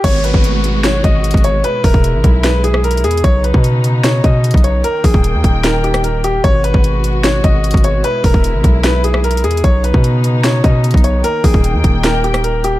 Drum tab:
CC |x-----------------------------------------------|------------------------------------------------|------------------------------------------------|------------------------------------------------|
HH |x-----x-----x-----x-----x-----x-----x-x-x-x-----|x-----o-----x-----x-----x-----x-----x-x-x-x-x-x-|x-----x-----x-----x-----x-----x-----x-x-x-x-----|x-----o-----x-----x-----x-----x--x--x-----x-----|
SD |------------------------o-----------------------|------------------------o--------r--------------|------------------------o-----------------------|------------------------o--------r--------------|
BD |o--------o--------------------o--------o--------|------o--o--------o-----------------------------|o--------o--------------------o--------o--------|------o--o--------o-----------------------------|

CC |------------------------------------------------|------------------------------------------------|------------------------------------------------|------------------------------------------------|
HH |x-----x-----x-----x-----x-----x-----x-x-x-x-----|x-----o-----x-----x-----x-----x-----x-x-x-x-x-x-|x-----x-----x-----x-----x-----x-----x-x-x-x-----|x-----o-----x-----x-----x-----x--x--x-----x-----|
SD |------------------------o-----------------------|------------------------o--------r--------------|------------------------o-----------------------|------------------------o--------r--------------|
BD |o--------o--------------------o--------o--------|------o--o--------o-----------------------------|o--------o--------------------o--------o--------|------o--o--------o-----------------------------|